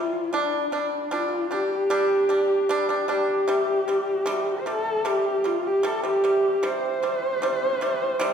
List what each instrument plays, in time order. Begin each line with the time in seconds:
Already playing: pipa C3 G3, horsehead fiddle F4
0.33 pipa G3 D4, horsehead fiddle D4
0.72 pipa G3 D4, horsehead fiddle D4
1.11 pipa G3 D4, horsehead fiddle F4
1.51 pipa G3 D4, horsehead fiddle G4
1.73 horsehead fiddle G4
1.90 pipa G3 D4
2.29 pipa G3 D4
2.69 pipa G3 D4
2.89 pipa G3 D4
3.08 pipa G3 D4, horsehead fiddle G4
3.48 pipa C3 G3
3.88 pipa C3 G3
4.26 pipa C3 G3
4.59 horsehead fiddle C5
4.66 pipa C3 G3, horsehead fiddle A4
5.05 pipa C3 G3, horsehead fiddle G4
5.44 pipa C3 G3, horsehead fiddle F4
5.67 horsehead fiddle G4
5.83 pipa C3 G3, horsehead fiddle A4
6.03 pipa C3 G3, horsehead fiddle G4
6.24 pipa C3 G3
6.63 pipa C3 G3, horsehead fiddle C5
7.03 pipa C3 G3
7.42 pipa C3 G3
7.81 pipa C3 G3
8.20 pipa C3 G3